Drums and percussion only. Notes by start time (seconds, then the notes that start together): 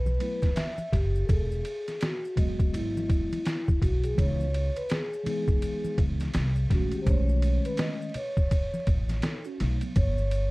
0.06 high conga, maracas
0.20 ride, maracas
0.42 kick, snare, ride, high conga, maracas
0.56 snare, hi-hat pedal, ride, maracas
0.78 high conga, maracas
0.93 kick, snare, ride, low conga, maracas
1.15 maracas
1.29 kick, ride, maracas
1.51 maracas
1.65 ride, maracas
1.88 snare, ride, maracas
2.01 snare, hi-hat pedal, ride, maracas
2.25 maracas
2.37 kick, ride, low conga, maracas
2.60 kick, ride, maracas
2.74 ride, maracas
2.97 high conga, maracas
3.09 kick, ride, maracas
3.32 ride, high conga, maracas
3.45 snare, hi-hat pedal, ride, maracas
3.68 kick, high conga, maracas
3.82 kick, ride, low conga, maracas
4.04 ride, maracas
4.18 kick, ride, maracas
4.40 high conga, maracas
4.54 ride, maracas
4.76 ride, maracas
4.89 snare, hi-hat pedal, ride, maracas
5.13 maracas
5.26 ride, low conga, maracas
5.48 kick, maracas
5.62 ride, maracas
5.85 high conga, maracas
5.98 kick, ride, maracas
6.20 snare, ride, high conga, maracas
6.34 snare, hi-hat pedal, ride, low conga, maracas
6.56 maracas
6.70 kick, snare, ride, low conga, maracas
6.91 ride, maracas
7.06 kick, ride, maracas
7.29 high conga, maracas
7.42 ride, maracas
7.65 ride, maracas
7.77 snare, hi-hat pedal, ride, maracas
8.02 maracas
8.14 ride, low conga, maracas
8.37 kick, maracas
8.51 kick, ride, maracas
8.74 high conga, maracas
8.87 kick, ride, maracas
9.09 snare, ride, high conga, maracas
9.22 snare, hi-hat pedal, ride, low conga, maracas
9.45 maracas
9.60 snare, ride, low conga, maracas
9.81 ride, maracas
9.96 kick, ride, maracas
10.18 high conga, maracas
10.31 ride, maracas